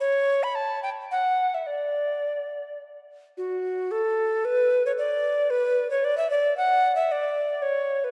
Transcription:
X:1
M:3/4
L:1/16
Q:1/4=112
K:D
V:1 name="Recorder"
c3 b a2 g2 f3 e | d8 z4 | F4 A4 B3 c | d4 B3 c d e d2 |
f3 e d4 c3 B |]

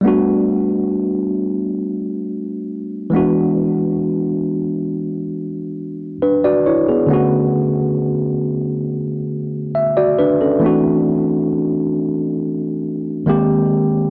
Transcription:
X:1
M:4/4
L:1/16
Q:1/4=68
K:Glyd
V:1 name="Tine electric piano"
z16 | z12 [DB] [Fd] [Ec] [B,^G]- | [B,^G] z8 z3 e [Fd] [DB] [CA]- | [CA] z12 z3 |]
V:2 name="Tine electric piano"
[G,A,B,DF]12- [G,A,B,DF]2 [E,^G,B,DF]2- | [E,^G,B,DF]12 z4 | [D,A,B,CF]16 | [E,A,=CDF]12 [^D,^G,^A,^B,=G]4 |]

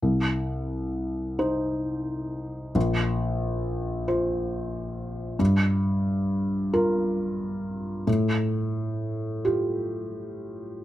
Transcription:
X:1
M:6/8
L:1/8
Q:3/8=45
K:Cdor
V:1 name="Felt piano"
C,,3 [Ec]3 | B,,,3 [Fc]3 | G,,3 [FB]3 | A,,3 [FG]3 |]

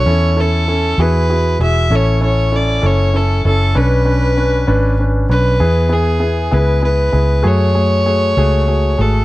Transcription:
X:1
M:6/8
L:1/8
Q:3/8=65
K:A
V:1 name="Violin"
c A2 B2 e | c c d c A A | B4 z B- | B G2 B B2 |
c4- c A |]
V:2 name="Grand piano"
[CEA] [CEA] [CEA] [EFG] [EFG] [EFG] | [CEA] [CEA] [CEA] [CEA] [CEA] [CEA] | [CDB] [CDB] [CDB] [CDB] [CDB] [CDB] | [B,EG] [B,EG] [B,EG] [B,EG] [B,EG] [B,EG] |
[A,FG] [A,FG] [A,FG] [A,FG] [A,FG] [A,FG] |]
V:3 name="Fingered electric bass" clef=bass
E,,3 E,,2 E,,, | A,,,3 F,,,2 F,,, | B,,,3 G,,,2 B,,, | E,,3 C,,2 C,, |
F,,3 C,,2 G,,, |]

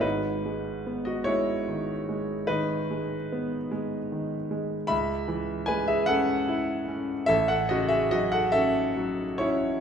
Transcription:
X:1
M:12/8
L:1/16
Q:3/8=49
K:G#phr
V:1 name="Grand piano"
[DB]4- [DB] [Fd] [Ec]6 [DB]6 z6 | [eb]4 [Bg] [Ge] [Af]6 [Ae] [Af] [Fd] [Ge] [Fd] [Af] [Ae]4 [Ec]2 |]
V:2 name="Grand piano" clef=bass
[G,,,G,,]2 G,2 B,2 G,2 D,2 G,2 D,2 G,2 B,2 G,2 D,2 G,2 | C,,2 E,2 G,2 C2 E2 C2 A,,,2 C,2 F,2 C2 F,2 C2 |]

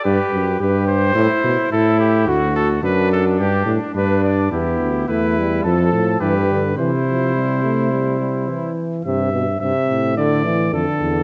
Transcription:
X:1
M:4/4
L:1/8
Q:1/4=107
K:G
V:1 name="Trumpet"
B2 B c3 A G | F A B A G z B d | [K:C] G2 B2 A2 B2 | c6- c z |
e2 e2 d2 A2 |]
V:2 name="Trumpet"
G2 G2 E2 E2 | F2 D4 D2 | [K:C] E2 E2 A2 G2 | E6- E z |
z8 |]
V:3 name="Trombone" clef=bass
z8 | z8 | [K:C] B,2 A, G, F,2 E, D, | E, F, G, A, G, G, E,2 |
C, B,, C,2 D, E, D,2 |]
V:4 name="Bass trombone" clef=bass
G,, F,, G,,2 A,, B,, A,,2 | D,,2 F,,2 G,, A,, G,,2 | [K:C] E,, D,, E,,2 F,, A,, G,,2 | C,6- C, z |
G,,2 G,, A,,3 F,, E,, |]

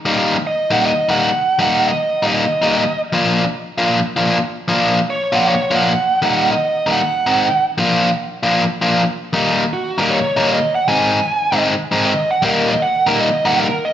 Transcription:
X:1
M:4/4
L:1/8
Q:"Swing" 1/4=155
K:Bbdor
V:1 name="Lead electric guitar"
z2 e _g e g3 | _g e2 e4 z | z8 | z2 d _g d g3 |
_g e2 g4 z | z8 | z2 _G B d2 e _g | a4 z2 e _g |
B e _g B e g B e |]
V:2 name="Overdriven electric guitar"
[E,G,B,E] z2 [E,G,B,E] z [E,G,B,E] z2 | [E,G,B,E] z2 [E,G,B,E] z [E,G,B,E] z2 | [F,B,=DF] z2 [F,B,DF] z [F,B,DF] z2 | [F,B,=DF] z2 [F,B,DF] z [F,B,DF] z2 |
[E,G,B,E] z2 [E,G,B,E] z [E,A,CE] z2 | [F,B,=DF] z2 [F,B,DF] z [F,B,DF] z2 | [E,G,B,E] z2 [E,G,B,E] z [E,G,B,E] z2 | [E,A,CE] z2 [E,A,CE] z [E,A,CE] z2 |
[E,G,B,E] z2 [E,G,B,E] z [E,G,B,E] z2 |]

